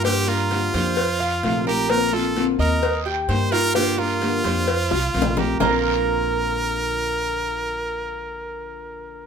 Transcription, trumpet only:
\new Staff \with { instrumentName = "Trumpet" } { \time 4/4 \key bes \major \tempo 4 = 129 g'8 f'2. g'8 | bes'8 a'4 bes'4 r8 c''8 bes'8 | g'8 f'2. g'8 | bes'1~ |
bes'1 | }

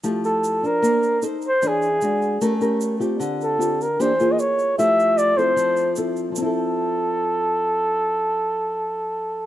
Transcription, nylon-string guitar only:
\new Staff \with { instrumentName = "Nylon-string guitar" } { \time 4/4 \key f \major \tempo 4 = 152 << { <a e' g'>4. <d' c''>4. <ees' a' c''>8 r8 | <d' gis' cis''>8 r8 <aes d' ges'>4 <cis' g' bes'>8 <cis' g' bes'>4 <c' f' g'>8~ | <c' f' g'>4 <c' f' g'>8 r8 <bes d' g'>8 <bes f' aes'>4. | <a e' g'>4. <c' e' a'>4. <c' e' a'>4 |
<f c' e' a'>1~ | <f c' e' a'>1 | } \\ { f2 bes4 r4 | e4 r4 a2 | d2 e4 r4 | f2 f2 |
r1 | r1 | } >> }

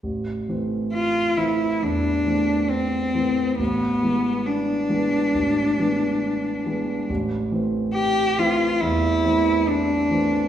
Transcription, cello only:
\new Staff \with { instrumentName = "Cello" } { \time 4/4 \key a \minor \tempo 4 = 69 r4 f'8 e'8 d'4 c'4 | b4 d'2. | r4 g'8 f'8 e'4 d'4 | }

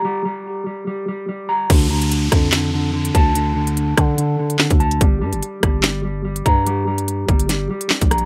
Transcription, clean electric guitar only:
\new Staff \with { instrumentName = "Clean electric guitar" } { \clef bass \time 4/4 \key d \minor \tempo 4 = 145 <g bes''>8 g4 g8 g8 g8 g8 bes''8 | d8 d4 d8 d8 d8 d8 a''8 | d8 d4 d8 d8 d8 d8 a''8 | g8 g4 g8 g8 g8 g8 bes''8 |
g8 g4 g8 g8 g8 g8 bes''8 | }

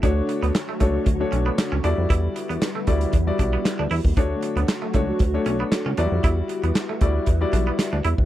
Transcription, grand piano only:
\new Staff \with { instrumentName = "Grand piano" } { \time 4/4 \key e \dorian \tempo 4 = 116 <a d' fis' cis''>4 r8 <a d' fis' cis''>8 r16 <a d' fis' cis''>4 r16 <g e' fis' d''>8~ | <g e' fis' d''>4 r8 <g e' fis' d''>8 r16 <g e' fis' d''>4 r8. | <a d' fis' cis''>4 r8 <a d' fis' cis''>8 r16 <a d' fis' cis''>4 r16 <fis g e' fis' d''>8~ | <fis g e' fis' d''>4 r8 <g e' fis' d''>8 r16 <g e' fis' d''>4 r8. | }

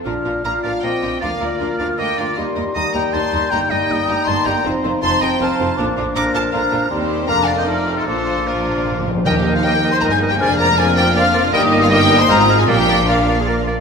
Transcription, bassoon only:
\new Staff \with { instrumentName = "Bassoon" } { \clef bass \time 3/4 \key bes \major \tempo 4 = 157 d'4 d'4 c'4 | bes2. | g4 g2 | g2. |
f4 f4 f4 | f4 f4 f4 | g4 bes4 a4 | f4 f4. r8 |
\key ees \major ees8 ees8 ees8 ees8 ees8 ees8 | f8 f8 f8 f8 f8 f8 | g8 g8 g8 g8 aes8 aes8 | bes8 bes8 bes8 bes8 bes8 bes8 | }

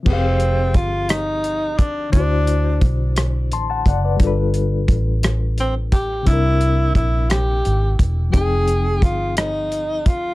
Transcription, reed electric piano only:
\new Staff \with { instrumentName = "Reed electric piano" } { \time 6/8 \key f \dorian \tempo 4. = 58 << { r2. | r2 <a'' c'''>16 <fis'' a''>16 <d'' fis''>16 <b' d''>16~ | <b' d''>16 r2 r8. | r2. |
r2. | } \\ { <f c' g' aes' f''>2. | <d d' e' fis' c''>2. | <g d' f' a' b'>2. | <c c' d' e' bes'>2. |
<f c' ees' aes' g''>2. | } >> }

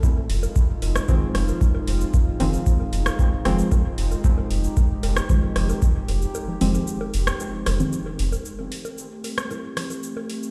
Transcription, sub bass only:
\new Staff \with { instrumentName = "Sub bass" } { \clef bass \time 4/4 \key f \lydian \tempo 4 = 114 r8 f,,8 r8 f,,8 r8 f,,8 r8 f,,8 | r8 f,,8 r8 f,,8 r8 f,,8 r8 f,,8 | r8 f,,8 r8 f,,8 r8 f,,8 r8 f,,8 | r8 f,,8 r8 f,,8 r8 f,,8 r8 f,,8 |
r1 | }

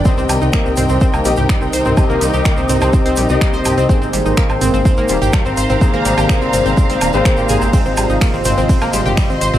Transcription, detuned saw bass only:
\new Staff \with { instrumentName = "Detuned saw bass" } { \clef bass \time 4/4 \key c \minor \tempo 4 = 125 r16 c,16 c,16 c,16 r16 c,16 c,16 c,16 r16 c,16 bes,,16 c,16 r16 c,16 c,16 c,16 | r16 c,16 c,16 c,16 r16 c,16 c,16 c,16 r16 c,16 bes,,16 c,16 r16 c,16 c,16 c,16 | r16 aes,,16 aes,,16 aes,,16 r16 aes,,16 aes,,16 aes,,16 r16 aes,,16 ees,,16 aes,,16 r16 aes,,16 aes,,16 aes,,16 | r16 aes,,16 aes,,16 aes,,16 r16 aes,,16 aes,,16 aes,,16 r16 aes,,16 ees,,16 aes,,16 r16 aes,,16 aes,,16 aes,,16 |
r16 aes,,16 aes,,16 aes,,16 r16 aes,,16 aes,,16 aes,,16 r16 aes,,16 aes,,16 aes,,16 r16 aes,,16 aes,,16 aes,,16 | }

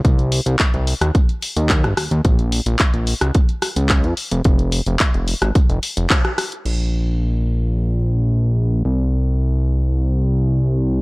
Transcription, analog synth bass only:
\new Staff \with { instrumentName = "Analog synth bass" } { \clef bass \time 4/4 \key bes \minor \tempo 4 = 109 c,8. c,16 r16 c,16 r16 ees,16 r8. ees,8 g,,16 ees,16 ees,16 | bes,,8. bes,,16 r16 bes,,16 r16 des,16 r8. des,8 f,16 r16 f,,16 | f,,8. f,,16 r16 f,,16 r16 aes,,16 r16 f,,16 r16 f,,16 r4 | bes,,1 |
c,1 | }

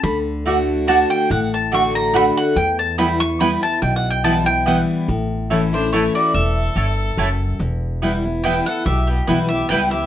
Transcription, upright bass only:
\new Staff \with { instrumentName = "Upright bass" } { \clef bass \time 3/4 \key e \dorian \tempo 4 = 143 d,2. | a,,2. | e,2. | b,,2. |
a,,2. | e,,4 g,,4 fis,,4 | e,,2. | b,,4 b,,4 cis,4 | }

